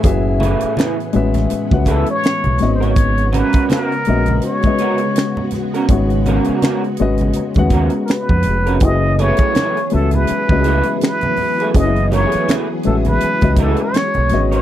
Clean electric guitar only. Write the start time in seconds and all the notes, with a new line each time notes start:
0.40 A3 E4 G#4 B4
0.77 A3 E4 G#4 B4
1.50 muted clean electric guitar stroke
1.87 A3 E4 G#4 B4
2.80 B3 C#4 F#4 A#4
3.32 B3 C#4 F#4 A#4
3.69 B3 C#4 F#4 A#4
4.43 muted clean electric guitar stroke
4.80 B3 C#4 F#4 A#4
5.74 B3 C#4 F#4 A#4
6.27 B3 C#4 F#4 A#4
6.63 B3 C#4 F#4 A#4
7.36 muted clean electric guitar stroke
7.72 B3 C#4 F#4 A#4
8.66 B3 C#4 F#4 A#4
9.19 A3 E4 G#4 B4
9.54 A3 E4 G#4 B4
10.29 muted clean electric guitar stroke
10.65 A3 E4 G#4 B4
11.60 A3 E4 G#4 B4
12.11 G#3 D#4 G4 A#4
12.25 A3 E4 G#4 B4
12.47 A3 E4 G#4 B4
13.22 muted clean electric guitar stroke
13.58 A3 E4 G#4 B4
14.52 B3 F#4 A#4 C#5